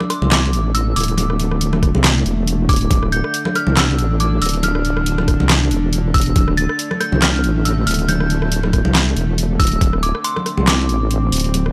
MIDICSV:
0, 0, Header, 1, 5, 480
1, 0, Start_track
1, 0, Key_signature, -1, "minor"
1, 0, Tempo, 431655
1, 1310, Time_signature, 4, 2, 24, 8
1, 13034, End_track
2, 0, Start_track
2, 0, Title_t, "Synth bell"
2, 0, Program_c, 0, 98
2, 0, Note_on_c, 0, 86, 106
2, 112, Note_on_c, 0, 84, 86
2, 126, Note_off_c, 0, 86, 0
2, 349, Note_on_c, 0, 86, 100
2, 358, Note_off_c, 0, 84, 0
2, 796, Note_off_c, 0, 86, 0
2, 829, Note_on_c, 0, 88, 106
2, 1070, Note_on_c, 0, 86, 92
2, 1077, Note_off_c, 0, 88, 0
2, 1986, Note_off_c, 0, 86, 0
2, 2993, Note_on_c, 0, 86, 100
2, 3438, Note_off_c, 0, 86, 0
2, 3473, Note_on_c, 0, 91, 117
2, 3955, Note_on_c, 0, 89, 102
2, 3966, Note_off_c, 0, 91, 0
2, 4194, Note_on_c, 0, 88, 103
2, 4200, Note_off_c, 0, 89, 0
2, 4674, Note_on_c, 0, 86, 94
2, 4687, Note_off_c, 0, 88, 0
2, 4914, Note_on_c, 0, 88, 99
2, 4919, Note_off_c, 0, 86, 0
2, 5155, Note_on_c, 0, 89, 92
2, 5159, Note_off_c, 0, 88, 0
2, 6068, Note_off_c, 0, 89, 0
2, 6830, Note_on_c, 0, 88, 101
2, 7310, Note_on_c, 0, 93, 119
2, 7325, Note_off_c, 0, 88, 0
2, 7789, Note_on_c, 0, 91, 99
2, 7805, Note_off_c, 0, 93, 0
2, 8028, Note_on_c, 0, 89, 105
2, 8037, Note_off_c, 0, 91, 0
2, 8510, Note_on_c, 0, 88, 90
2, 8523, Note_off_c, 0, 89, 0
2, 8749, Note_on_c, 0, 89, 92
2, 8757, Note_off_c, 0, 88, 0
2, 8973, Note_off_c, 0, 89, 0
2, 8991, Note_on_c, 0, 91, 98
2, 9906, Note_off_c, 0, 91, 0
2, 10670, Note_on_c, 0, 88, 123
2, 11116, Note_off_c, 0, 88, 0
2, 11151, Note_on_c, 0, 86, 101
2, 11374, Note_off_c, 0, 86, 0
2, 11391, Note_on_c, 0, 84, 95
2, 11869, Note_on_c, 0, 86, 94
2, 11885, Note_off_c, 0, 84, 0
2, 13034, Note_off_c, 0, 86, 0
2, 13034, End_track
3, 0, Start_track
3, 0, Title_t, "Synth drone"
3, 0, Program_c, 1, 95
3, 0, Note_on_c, 1, 50, 82
3, 0, Note_on_c, 1, 57, 79
3, 3230, Note_on_c, 1, 62, 84
3, 3258, Note_off_c, 1, 57, 0
3, 7069, Note_on_c, 1, 57, 80
3, 7097, Note_off_c, 1, 62, 0
3, 10909, Note_on_c, 1, 60, 86
3, 10936, Note_off_c, 1, 57, 0
3, 13034, Note_off_c, 1, 50, 0
3, 13034, Note_off_c, 1, 60, 0
3, 13034, End_track
4, 0, Start_track
4, 0, Title_t, "Wobble bass"
4, 0, Program_c, 2, 39
4, 243, Note_on_c, 2, 36, 90
4, 591, Note_on_c, 2, 33, 90
4, 607, Note_off_c, 2, 36, 0
4, 1057, Note_off_c, 2, 33, 0
4, 1071, Note_on_c, 2, 26, 94
4, 2146, Note_off_c, 2, 26, 0
4, 2164, Note_on_c, 2, 36, 93
4, 2497, Note_off_c, 2, 36, 0
4, 2511, Note_on_c, 2, 28, 97
4, 2977, Note_off_c, 2, 28, 0
4, 2991, Note_on_c, 2, 26, 101
4, 3214, Note_off_c, 2, 26, 0
4, 3231, Note_on_c, 2, 26, 101
4, 3586, Note_off_c, 2, 26, 0
4, 4083, Note_on_c, 2, 36, 88
4, 4430, Note_on_c, 2, 33, 95
4, 4447, Note_off_c, 2, 36, 0
4, 4896, Note_off_c, 2, 33, 0
4, 4911, Note_on_c, 2, 26, 99
4, 5986, Note_off_c, 2, 26, 0
4, 6003, Note_on_c, 2, 36, 91
4, 6350, Note_on_c, 2, 28, 99
4, 6366, Note_off_c, 2, 36, 0
4, 7056, Note_off_c, 2, 28, 0
4, 7071, Note_on_c, 2, 26, 103
4, 7426, Note_off_c, 2, 26, 0
4, 7921, Note_on_c, 2, 36, 89
4, 8269, Note_on_c, 2, 33, 95
4, 8286, Note_off_c, 2, 36, 0
4, 8736, Note_off_c, 2, 33, 0
4, 8750, Note_on_c, 2, 26, 95
4, 9826, Note_off_c, 2, 26, 0
4, 9843, Note_on_c, 2, 36, 90
4, 10176, Note_off_c, 2, 36, 0
4, 10190, Note_on_c, 2, 28, 90
4, 10657, Note_off_c, 2, 28, 0
4, 10671, Note_on_c, 2, 26, 103
4, 10893, Note_off_c, 2, 26, 0
4, 10911, Note_on_c, 2, 26, 100
4, 11266, Note_off_c, 2, 26, 0
4, 11763, Note_on_c, 2, 36, 90
4, 12112, Note_on_c, 2, 33, 93
4, 12129, Note_off_c, 2, 36, 0
4, 12577, Note_off_c, 2, 33, 0
4, 12592, Note_on_c, 2, 26, 100
4, 13034, Note_off_c, 2, 26, 0
4, 13034, End_track
5, 0, Start_track
5, 0, Title_t, "Drums"
5, 4, Note_on_c, 9, 37, 53
5, 5, Note_on_c, 9, 63, 67
5, 112, Note_off_c, 9, 37, 0
5, 112, Note_on_c, 9, 37, 49
5, 112, Note_on_c, 9, 42, 55
5, 116, Note_off_c, 9, 63, 0
5, 223, Note_off_c, 9, 37, 0
5, 223, Note_off_c, 9, 42, 0
5, 246, Note_on_c, 9, 63, 92
5, 351, Note_on_c, 9, 38, 120
5, 351, Note_on_c, 9, 39, 99
5, 351, Note_on_c, 9, 42, 82
5, 357, Note_off_c, 9, 63, 0
5, 462, Note_off_c, 9, 38, 0
5, 462, Note_off_c, 9, 39, 0
5, 462, Note_off_c, 9, 42, 0
5, 592, Note_on_c, 9, 42, 56
5, 703, Note_off_c, 9, 42, 0
5, 831, Note_on_c, 9, 42, 84
5, 942, Note_off_c, 9, 42, 0
5, 1071, Note_on_c, 9, 46, 90
5, 1115, Note_on_c, 9, 42, 66
5, 1151, Note_off_c, 9, 42, 0
5, 1151, Note_on_c, 9, 42, 81
5, 1182, Note_off_c, 9, 46, 0
5, 1203, Note_off_c, 9, 42, 0
5, 1203, Note_on_c, 9, 42, 41
5, 1307, Note_on_c, 9, 63, 80
5, 1311, Note_off_c, 9, 42, 0
5, 1311, Note_on_c, 9, 42, 83
5, 1419, Note_off_c, 9, 63, 0
5, 1423, Note_off_c, 9, 42, 0
5, 1444, Note_on_c, 9, 37, 52
5, 1551, Note_on_c, 9, 42, 57
5, 1555, Note_off_c, 9, 37, 0
5, 1663, Note_off_c, 9, 42, 0
5, 1684, Note_on_c, 9, 37, 52
5, 1791, Note_on_c, 9, 42, 82
5, 1795, Note_off_c, 9, 37, 0
5, 1902, Note_off_c, 9, 42, 0
5, 1921, Note_on_c, 9, 63, 67
5, 1924, Note_on_c, 9, 37, 52
5, 2031, Note_off_c, 9, 37, 0
5, 2031, Note_on_c, 9, 36, 66
5, 2031, Note_on_c, 9, 37, 50
5, 2031, Note_on_c, 9, 42, 50
5, 2033, Note_off_c, 9, 63, 0
5, 2142, Note_off_c, 9, 36, 0
5, 2143, Note_off_c, 9, 37, 0
5, 2143, Note_off_c, 9, 42, 0
5, 2165, Note_on_c, 9, 63, 92
5, 2271, Note_on_c, 9, 38, 127
5, 2271, Note_on_c, 9, 39, 93
5, 2271, Note_on_c, 9, 42, 82
5, 2276, Note_off_c, 9, 63, 0
5, 2382, Note_off_c, 9, 38, 0
5, 2382, Note_off_c, 9, 39, 0
5, 2382, Note_off_c, 9, 42, 0
5, 2512, Note_on_c, 9, 42, 55
5, 2623, Note_off_c, 9, 42, 0
5, 2752, Note_on_c, 9, 42, 84
5, 2863, Note_off_c, 9, 42, 0
5, 2992, Note_on_c, 9, 36, 117
5, 2992, Note_on_c, 9, 46, 91
5, 3035, Note_on_c, 9, 42, 64
5, 3072, Note_off_c, 9, 42, 0
5, 3072, Note_on_c, 9, 42, 82
5, 3103, Note_off_c, 9, 36, 0
5, 3103, Note_off_c, 9, 46, 0
5, 3124, Note_off_c, 9, 42, 0
5, 3124, Note_on_c, 9, 42, 39
5, 3229, Note_on_c, 9, 63, 69
5, 3232, Note_off_c, 9, 42, 0
5, 3232, Note_on_c, 9, 36, 127
5, 3232, Note_on_c, 9, 42, 82
5, 3340, Note_off_c, 9, 63, 0
5, 3343, Note_off_c, 9, 36, 0
5, 3343, Note_off_c, 9, 42, 0
5, 3365, Note_on_c, 9, 37, 50
5, 3473, Note_on_c, 9, 42, 54
5, 3476, Note_off_c, 9, 37, 0
5, 3584, Note_off_c, 9, 42, 0
5, 3605, Note_on_c, 9, 37, 55
5, 3712, Note_on_c, 9, 42, 79
5, 3716, Note_off_c, 9, 37, 0
5, 3823, Note_off_c, 9, 42, 0
5, 3840, Note_on_c, 9, 63, 77
5, 3845, Note_on_c, 9, 37, 55
5, 3951, Note_off_c, 9, 63, 0
5, 3952, Note_off_c, 9, 37, 0
5, 3952, Note_on_c, 9, 37, 48
5, 3952, Note_on_c, 9, 42, 49
5, 4063, Note_off_c, 9, 37, 0
5, 4063, Note_off_c, 9, 42, 0
5, 4077, Note_on_c, 9, 63, 99
5, 4189, Note_off_c, 9, 63, 0
5, 4192, Note_on_c, 9, 38, 127
5, 4192, Note_on_c, 9, 39, 93
5, 4192, Note_on_c, 9, 42, 84
5, 4303, Note_off_c, 9, 38, 0
5, 4303, Note_off_c, 9, 39, 0
5, 4303, Note_off_c, 9, 42, 0
5, 4431, Note_on_c, 9, 42, 53
5, 4543, Note_off_c, 9, 42, 0
5, 4671, Note_on_c, 9, 42, 77
5, 4782, Note_off_c, 9, 42, 0
5, 4911, Note_on_c, 9, 46, 85
5, 4955, Note_on_c, 9, 42, 62
5, 4991, Note_off_c, 9, 42, 0
5, 4991, Note_on_c, 9, 42, 79
5, 5022, Note_off_c, 9, 46, 0
5, 5043, Note_off_c, 9, 42, 0
5, 5043, Note_on_c, 9, 42, 39
5, 5147, Note_on_c, 9, 63, 72
5, 5150, Note_off_c, 9, 42, 0
5, 5150, Note_on_c, 9, 42, 79
5, 5259, Note_off_c, 9, 63, 0
5, 5262, Note_off_c, 9, 42, 0
5, 5283, Note_on_c, 9, 37, 55
5, 5390, Note_on_c, 9, 42, 53
5, 5394, Note_off_c, 9, 37, 0
5, 5502, Note_off_c, 9, 42, 0
5, 5523, Note_on_c, 9, 37, 57
5, 5630, Note_on_c, 9, 42, 77
5, 5634, Note_off_c, 9, 37, 0
5, 5741, Note_off_c, 9, 42, 0
5, 5762, Note_on_c, 9, 37, 57
5, 5763, Note_on_c, 9, 63, 74
5, 5870, Note_off_c, 9, 37, 0
5, 5870, Note_on_c, 9, 37, 51
5, 5870, Note_on_c, 9, 42, 52
5, 5871, Note_on_c, 9, 36, 64
5, 5874, Note_off_c, 9, 63, 0
5, 5981, Note_off_c, 9, 37, 0
5, 5981, Note_off_c, 9, 42, 0
5, 5983, Note_off_c, 9, 36, 0
5, 6006, Note_on_c, 9, 63, 91
5, 6110, Note_on_c, 9, 38, 124
5, 6110, Note_on_c, 9, 39, 91
5, 6110, Note_on_c, 9, 42, 76
5, 6118, Note_off_c, 9, 63, 0
5, 6222, Note_off_c, 9, 38, 0
5, 6222, Note_off_c, 9, 39, 0
5, 6222, Note_off_c, 9, 42, 0
5, 6350, Note_on_c, 9, 42, 54
5, 6461, Note_off_c, 9, 42, 0
5, 6591, Note_on_c, 9, 42, 74
5, 6702, Note_off_c, 9, 42, 0
5, 6831, Note_on_c, 9, 36, 110
5, 6831, Note_on_c, 9, 46, 92
5, 6875, Note_on_c, 9, 42, 61
5, 6910, Note_off_c, 9, 42, 0
5, 6910, Note_on_c, 9, 42, 76
5, 6942, Note_off_c, 9, 36, 0
5, 6942, Note_off_c, 9, 46, 0
5, 6963, Note_off_c, 9, 42, 0
5, 6963, Note_on_c, 9, 42, 37
5, 7070, Note_off_c, 9, 42, 0
5, 7070, Note_on_c, 9, 42, 77
5, 7071, Note_on_c, 9, 36, 125
5, 7073, Note_on_c, 9, 63, 66
5, 7181, Note_off_c, 9, 42, 0
5, 7182, Note_off_c, 9, 36, 0
5, 7185, Note_off_c, 9, 63, 0
5, 7203, Note_on_c, 9, 37, 56
5, 7311, Note_on_c, 9, 42, 52
5, 7314, Note_off_c, 9, 37, 0
5, 7422, Note_off_c, 9, 42, 0
5, 7443, Note_on_c, 9, 37, 58
5, 7550, Note_on_c, 9, 42, 81
5, 7554, Note_off_c, 9, 37, 0
5, 7661, Note_off_c, 9, 42, 0
5, 7682, Note_on_c, 9, 37, 56
5, 7684, Note_on_c, 9, 63, 60
5, 7791, Note_off_c, 9, 37, 0
5, 7791, Note_on_c, 9, 37, 56
5, 7791, Note_on_c, 9, 42, 48
5, 7796, Note_off_c, 9, 63, 0
5, 7902, Note_off_c, 9, 37, 0
5, 7902, Note_off_c, 9, 42, 0
5, 7921, Note_on_c, 9, 63, 92
5, 8031, Note_on_c, 9, 38, 118
5, 8031, Note_on_c, 9, 39, 91
5, 8031, Note_on_c, 9, 42, 78
5, 8032, Note_off_c, 9, 63, 0
5, 8142, Note_off_c, 9, 38, 0
5, 8142, Note_off_c, 9, 39, 0
5, 8142, Note_off_c, 9, 42, 0
5, 8271, Note_on_c, 9, 42, 50
5, 8382, Note_off_c, 9, 42, 0
5, 8510, Note_on_c, 9, 42, 83
5, 8622, Note_off_c, 9, 42, 0
5, 8750, Note_on_c, 9, 46, 93
5, 8795, Note_on_c, 9, 42, 63
5, 8831, Note_off_c, 9, 42, 0
5, 8831, Note_on_c, 9, 42, 76
5, 8861, Note_off_c, 9, 46, 0
5, 8883, Note_off_c, 9, 42, 0
5, 8883, Note_on_c, 9, 42, 36
5, 8991, Note_off_c, 9, 42, 0
5, 8991, Note_on_c, 9, 42, 76
5, 8994, Note_on_c, 9, 63, 62
5, 9102, Note_off_c, 9, 42, 0
5, 9105, Note_off_c, 9, 63, 0
5, 9123, Note_on_c, 9, 37, 56
5, 9230, Note_on_c, 9, 42, 56
5, 9234, Note_off_c, 9, 37, 0
5, 9342, Note_off_c, 9, 42, 0
5, 9363, Note_on_c, 9, 37, 56
5, 9470, Note_on_c, 9, 42, 81
5, 9474, Note_off_c, 9, 37, 0
5, 9582, Note_off_c, 9, 42, 0
5, 9601, Note_on_c, 9, 63, 64
5, 9603, Note_on_c, 9, 37, 57
5, 9711, Note_off_c, 9, 37, 0
5, 9711, Note_on_c, 9, 36, 61
5, 9711, Note_on_c, 9, 37, 53
5, 9711, Note_on_c, 9, 42, 49
5, 9712, Note_off_c, 9, 63, 0
5, 9822, Note_off_c, 9, 36, 0
5, 9822, Note_off_c, 9, 37, 0
5, 9822, Note_off_c, 9, 42, 0
5, 9841, Note_on_c, 9, 63, 94
5, 9951, Note_on_c, 9, 38, 117
5, 9951, Note_on_c, 9, 39, 85
5, 9951, Note_on_c, 9, 42, 82
5, 9952, Note_off_c, 9, 63, 0
5, 10062, Note_off_c, 9, 38, 0
5, 10062, Note_off_c, 9, 39, 0
5, 10062, Note_off_c, 9, 42, 0
5, 10191, Note_on_c, 9, 42, 52
5, 10303, Note_off_c, 9, 42, 0
5, 10431, Note_on_c, 9, 42, 77
5, 10543, Note_off_c, 9, 42, 0
5, 10671, Note_on_c, 9, 36, 105
5, 10672, Note_on_c, 9, 46, 96
5, 10716, Note_on_c, 9, 42, 67
5, 10751, Note_off_c, 9, 42, 0
5, 10751, Note_on_c, 9, 42, 82
5, 10782, Note_off_c, 9, 36, 0
5, 10783, Note_off_c, 9, 46, 0
5, 10805, Note_off_c, 9, 42, 0
5, 10805, Note_on_c, 9, 42, 38
5, 10911, Note_on_c, 9, 36, 116
5, 10912, Note_off_c, 9, 42, 0
5, 10912, Note_on_c, 9, 42, 81
5, 10917, Note_on_c, 9, 63, 63
5, 11022, Note_off_c, 9, 36, 0
5, 11023, Note_off_c, 9, 42, 0
5, 11029, Note_off_c, 9, 63, 0
5, 11044, Note_on_c, 9, 37, 55
5, 11152, Note_on_c, 9, 42, 58
5, 11155, Note_off_c, 9, 37, 0
5, 11263, Note_off_c, 9, 42, 0
5, 11284, Note_on_c, 9, 37, 54
5, 11391, Note_on_c, 9, 42, 86
5, 11396, Note_off_c, 9, 37, 0
5, 11503, Note_off_c, 9, 42, 0
5, 11524, Note_on_c, 9, 37, 57
5, 11530, Note_on_c, 9, 63, 60
5, 11631, Note_off_c, 9, 37, 0
5, 11631, Note_on_c, 9, 37, 53
5, 11631, Note_on_c, 9, 42, 53
5, 11641, Note_off_c, 9, 63, 0
5, 11742, Note_off_c, 9, 37, 0
5, 11742, Note_off_c, 9, 42, 0
5, 11759, Note_on_c, 9, 63, 86
5, 11870, Note_off_c, 9, 63, 0
5, 11871, Note_on_c, 9, 38, 117
5, 11871, Note_on_c, 9, 39, 87
5, 11871, Note_on_c, 9, 42, 83
5, 11982, Note_off_c, 9, 38, 0
5, 11982, Note_off_c, 9, 39, 0
5, 11982, Note_off_c, 9, 42, 0
5, 12111, Note_on_c, 9, 42, 53
5, 12222, Note_off_c, 9, 42, 0
5, 12351, Note_on_c, 9, 42, 85
5, 12462, Note_off_c, 9, 42, 0
5, 12592, Note_on_c, 9, 46, 97
5, 12637, Note_on_c, 9, 42, 67
5, 12672, Note_off_c, 9, 42, 0
5, 12672, Note_on_c, 9, 42, 80
5, 12703, Note_off_c, 9, 46, 0
5, 12725, Note_off_c, 9, 42, 0
5, 12725, Note_on_c, 9, 42, 38
5, 12831, Note_on_c, 9, 63, 66
5, 12832, Note_off_c, 9, 42, 0
5, 12832, Note_on_c, 9, 42, 88
5, 12942, Note_off_c, 9, 63, 0
5, 12943, Note_off_c, 9, 42, 0
5, 12965, Note_on_c, 9, 37, 53
5, 13034, Note_off_c, 9, 37, 0
5, 13034, End_track
0, 0, End_of_file